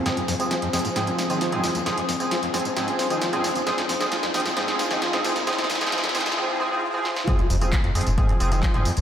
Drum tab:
HH |x-x-o-x-x-x-oxx-x-x-o-x-x-x-o-x-|x-x-o-x-x-x-oxx-x-x-o-x-x-x-o-x-|x-x-o-x-x-x-oxx-x-x-o-x-x-x-o-x-|x-x-o-x-x-x-oxx-----------------|
TB |x---x-x-x---x-x-x---x-x-x---x-x-|x---x-x-x---x-x-x---x-x-x---x-x-|x---x-x-x---x-x-x---x-x-x---x-x-|x---x-x-x---x-x-----------------|
CP |--------------------------------|--------------------------------|--------------------------------|--------------------------------|
SD |o---o---o---o---o---o---o---o---|o---o---o---o---o---o---o---o---|o-o-o-o-o-o-o-o-o-o-o-o-o-o-o-o-|oooooooooooooooo------------o-o-|
BD |--------------------------------|--------------------------------|--------------------------------|--------------------------------|

HH |x-x-o-x-x-x-oxx-x-x-o-x-x-x-o-x-|
TB |x---x-x-x---x-x-x---x-x-x---x-x-|
CP |--------x---------------x-------|
SD |--------------------------------|
BD |o-------o-------o-------o-------|